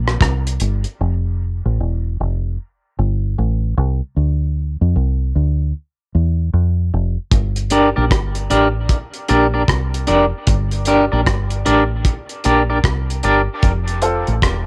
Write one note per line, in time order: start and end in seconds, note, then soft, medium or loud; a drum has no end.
0.00 0.18 A#1 medium
0.08 cross-stick medium
0.21 0.58 C2 medium
0.21 kick loud
0.21 cross-stick loud
0.21 closed hi-hat medium
0.47 closed hi-hat medium
0.60 0.84 G1 medium
0.60 closed hi-hat medium
0.84 closed hi-hat soft
1.01 1.60 F1 loud
1.66 1.78 A1 medium
1.80 2.16 E1 medium
2.20 2.56 F1 medium
2.99 3.35 G1 loud
3.38 3.74 A1 medium
3.78 4.00 C2 loud
4.16 4.76 D2 medium
4.81 4.94 F2 medium
4.96 5.32 C2 medium
5.36 5.72 D2 medium
6.15 6.51 E2 medium
6.54 6.90 F2 medium
6.94 7.16 F1 loud
7.32 7.92 G1 medium
7.32 kick loud
7.32 closed hi-hat medium
7.56 closed hi-hat soft
7.70 7.88 D4 medium
7.70 7.89 G4 medium
7.70 7.89 A#4 medium
7.70 7.89 D5 medium
7.70 closed hi-hat medium
7.96 8.10 A#1 medium
7.96 8.04 D4 soft
7.96 8.04 G4 soft
7.96 8.04 A#4 medium
7.96 8.04 D5 medium
8.11 8.48 G1 medium
8.11 kick loud
8.11 cross-stick loud
8.11 closed hi-hat medium
8.35 closed hi-hat soft
8.50 8.87 A1 medium
8.50 8.67 D4 medium
8.50 8.67 G4 medium
8.50 8.68 A#4 medium
8.50 8.68 D5 medium
8.50 closed hi-hat medium
8.89 kick medium
8.89 closed hi-hat medium
9.14 closed hi-hat soft
9.29 9.66 A#1 medium
9.29 9.46 D4 medium
9.29 9.46 G4 medium
9.29 9.46 A#4 medium
9.29 9.46 D5 medium
9.29 closed hi-hat medium
9.54 9.62 D4 soft
9.54 9.62 G4 medium
9.54 9.62 A#4 medium
9.54 9.62 D5 medium
9.68 10.05 C2 medium
9.68 kick medium
9.68 cross-stick loud
9.68 closed hi-hat medium
9.94 closed hi-hat medium
10.07 10.31 F1 medium
10.07 10.25 D4 medium
10.07 10.25 G4 medium
10.07 10.25 A#4 medium
10.07 10.25 D5 medium
10.07 closed hi-hat medium
10.47 11.08 G1 loud
10.47 kick loud
10.47 closed hi-hat medium
10.71 closed hi-hat soft
10.85 11.04 D4 medium
10.85 11.04 G4 medium
10.85 11.04 A#4 medium
10.85 11.05 D5 medium
10.85 closed hi-hat medium
11.12 11.26 A#1 medium
11.12 11.20 D4 soft
11.12 11.20 G4 medium
11.12 11.20 A#4 medium
11.12 11.20 D5 medium
11.26 11.63 G1 medium
11.26 kick loud
11.26 cross-stick loud
11.26 closed hi-hat medium
11.50 closed hi-hat soft
11.65 12.03 A1 medium
11.65 11.83 D4 medium
11.65 11.83 G4 medium
11.65 11.83 A#4 medium
11.65 11.83 D5 medium
11.65 closed hi-hat medium
12.05 kick loud
12.05 closed hi-hat medium
12.29 closed hi-hat soft
12.44 12.82 A#1 medium
12.44 12.62 D4 medium
12.44 12.62 G4 medium
12.44 12.62 A#4 medium
12.44 12.62 D5 medium
12.44 closed hi-hat medium
12.70 12.78 D4 soft
12.70 12.78 G4 soft
12.70 12.78 A#4 medium
12.70 12.77 D5 medium
12.84 13.21 C2 medium
12.84 kick loud
12.84 cross-stick medium
12.84 closed hi-hat medium
13.10 closed hi-hat medium
13.23 13.47 G1 medium
13.23 13.41 D4 medium
13.23 13.41 G4 medium
13.23 13.41 A#4 medium
13.23 13.41 D5 medium
13.23 closed hi-hat medium
13.63 14.23 F1 loud
13.63 kick loud
13.63 closed hi-hat medium
13.88 closed hi-hat soft
14.02 14.27 C4 medium
14.02 14.27 F4 medium
14.02 14.28 A4 loud
14.02 closed hi-hat medium
14.27 14.41 A1 medium
14.27 closed hi-hat soft
14.42 14.66 E1 medium
14.42 kick loud
14.42 cross-stick loud
14.42 closed hi-hat medium